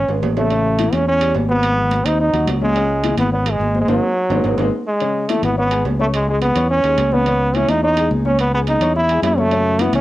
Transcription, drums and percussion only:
0.08 high conga, high timbale
0.22 high conga, low timbale
0.37 high conga, low timbale
0.50 high conga, high timbale
0.65 high conga
0.79 high conga, high timbale
0.93 high conga, high timbale
1.07 high conga
1.21 high conga, high timbale
1.35 high conga, low timbale
1.49 high conga
1.63 high conga, high timbale
1.77 high conga
1.91 high conga, high timbale
2.06 high timbale
2.20 high conga
2.34 high timbale
2.47 high conga, high timbale, low timbale
2.61 high conga
2.76 high timbale
2.90 high conga
3.04 high conga, high timbale
3.18 high conga, high timbale
3.33 high conga
3.46 high conga, high timbale
3.61 high conga
3.75 high conga
3.88 high conga, high timbale
4.30 high conga, high timbale
4.44 high conga, high timbale
4.58 high conga, high timbale
5.00 high conga, high timbale
5.16 high conga
5.29 high conga, high timbale
5.43 high conga, high timbale
5.58 high conga
5.71 high conga, high timbale
5.85 high conga, low timbale
6.00 high conga
6.14 high conga, high timbale
6.28 high conga
6.41 high conga, high timbale
6.55 low conga, high timbale
6.70 high conga
6.84 high timbale
6.98 high conga, high timbale, low timbale
7.12 high conga
7.26 high conga, high timbale
7.40 high conga
7.54 high conga, high timbale
7.68 high conga, high timbale
7.82 high conga
7.97 high conga, high timbale
8.11 high conga
8.25 high conga
8.39 high conga, high timbale
8.53 high conga
8.67 high conga, high timbale
8.81 low conga, high timbale
8.96 high conga, low conga
9.09 high conga, high timbale
9.23 high conga, high timbale, low timbale
9.38 high conga
9.51 high conga, high timbale
9.66 high conga
9.79 high conga, high timbale
9.93 high conga, high timbale

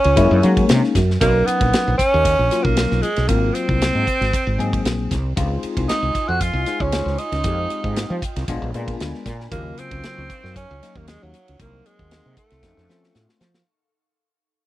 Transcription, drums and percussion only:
0.04 ride
0.17 kick, hi-hat pedal, ride
0.43 hi-hat pedal, ride
0.57 kick, ride
0.69 snare, hi-hat pedal, ride
0.84 snare
0.95 kick, snare, hi-hat pedal, ride
1.11 snare
1.21 kick, hi-hat pedal, ride
1.47 hi-hat pedal, ride
1.61 kick, ride
1.73 snare, hi-hat pedal, ride
1.99 kick, hi-hat pedal, ride
2.25 kick, hi-hat pedal, ride
2.51 hi-hat pedal, ride
2.65 kick
2.77 snare, hi-hat pedal, ride
2.92 snare
3.03 hi-hat pedal, ride
3.16 snare, ride
3.29 kick, hi-hat pedal, ride
3.55 hi-hat pedal, ride
3.69 kick
3.82 snare, hi-hat pedal, ride
4.07 kick, hi-hat pedal, ride
4.22 snare, ride
4.33 kick, hi-hat pedal, ride
4.60 hi-hat pedal, ride
4.73 kick, ride
4.85 snare, hi-hat pedal, ride
5.11 kick, snare, hi-hat pedal, ride
5.37 kick, hi-hat pedal, ride
5.63 hi-hat pedal, ride
5.77 kick, ride
5.89 snare, hi-hat pedal, ride
6.15 kick, hi-hat pedal, ride
6.41 kick, hi-hat pedal, ride
6.66 snare, hi-hat pedal, ride
6.80 kick
6.92 snare, hi-hat pedal, ride
7.08 snare
7.18 hi-hat pedal, ride
7.32 snare, ride
7.44 kick, hi-hat pedal, ride
7.70 hi-hat pedal, ride
7.84 kick
7.96 snare, hi-hat pedal, ride
8.22 kick, hi-hat pedal, ride
8.36 snare, ride
8.48 kick, hi-hat pedal, ride
8.74 hi-hat pedal, ride
8.88 kick, ride
9.00 snare, hi-hat pedal, ride
9.14 snare
9.26 kick, snare, hi-hat pedal, ride
9.40 snare
9.52 kick, hi-hat pedal, ride
9.78 hi-hat pedal, ride
9.91 kick, ride
10.04 snare, hi-hat pedal, ride
10.30 kick, hi-hat pedal, ride
10.45 snare
10.56 kick, hi-hat pedal, ride
10.83 snare, hi-hat pedal, ride
10.96 kick
11.08 snare, hi-hat pedal, ride
11.34 hi-hat pedal, ride
11.48 ride
11.60 kick, hi-hat pedal, ride
11.86 hi-hat pedal, ride
11.99 kick
12.11 snare, hi-hat pedal, ride
12.37 kick, hi-hat pedal, ride
12.50 snare, ride
12.63 kick, snare, hi-hat pedal
12.78 snare
12.89 snare, hi-hat pedal
13.04 snare
13.15 snare, hi-hat pedal
13.29 snare
13.40 snare, hi-hat pedal
13.54 snare

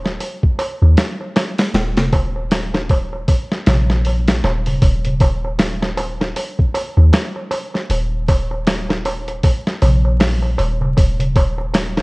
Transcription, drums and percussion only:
0.05 snare, darbuka tek
0.20 open hi-hat, darbuka tek
0.43 kick
0.59 open hi-hat, darbuka tek
0.82 darbuka tek
0.97 snare, open hi-hat, darbuka tek
1.21 darbuka tek
1.36 snare, open hi-hat, darbuka tek
1.59 snare, open hi-hat, darbuka tek
1.74 snare, open hi-hat, darbuka tek
1.97 snare, open hi-hat, darbuka tek, darbuka dum
2.13 kick, open hi-hat, darbuka tek
2.36 darbuka tek
2.51 snare, open hi-hat, darbuka tek
2.74 snare, darbuka tek
2.89 kick, open hi-hat, darbuka tek
3.13 darbuka tek
3.28 kick, open hi-hat, darbuka tek
3.52 snare
3.66 snare, open hi-hat, darbuka tek, darbuka dum
3.90 snare, darbuka tek
4.05 open hi-hat, darbuka tek
4.27 snare, open hi-hat, darbuka tek
4.44 snare, darbuka tek
4.66 open hi-hat, darbuka tek, darbuka dum
4.82 kick, open hi-hat, darbuka tek
5.05 closed hi-hat, darbuka dum
5.20 kick, open hi-hat, darbuka tek
5.45 darbuka tek
5.59 snare, open hi-hat, darbuka tek
5.82 snare, darbuka tek
5.97 open hi-hat, darbuka tek
6.21 snare, darbuka tek
6.36 open hi-hat, darbuka tek
6.59 kick
6.74 open hi-hat, darbuka tek
6.97 darbuka tek
7.13 snare, open hi-hat, darbuka tek
7.36 darbuka tek
7.51 open hi-hat, darbuka tek
7.74 snare, darbuka tek
7.90 open hi-hat, darbuka tek
8.28 kick, open hi-hat, darbuka tek
8.51 darbuka tek
8.67 snare, open hi-hat, darbuka tek
8.89 snare, darbuka tek
9.05 open hi-hat, darbuka tek
9.28 closed hi-hat, darbuka tek
9.43 kick, open hi-hat, darbuka tek
9.67 snare
9.82 open hi-hat, darbuka tek, darbuka dum
10.05 darbuka tek
10.20 snare, open hi-hat, darbuka tek
10.42 darbuka tek
10.58 open hi-hat, darbuka tek
10.81 darbuka tek, darbuka dum
10.97 kick, open hi-hat, darbuka tek
11.20 closed hi-hat, darbuka dum
11.36 kick, open hi-hat, darbuka tek
11.58 darbuka tek
11.74 snare, open hi-hat, darbuka tek
11.97 snare, darbuka tek

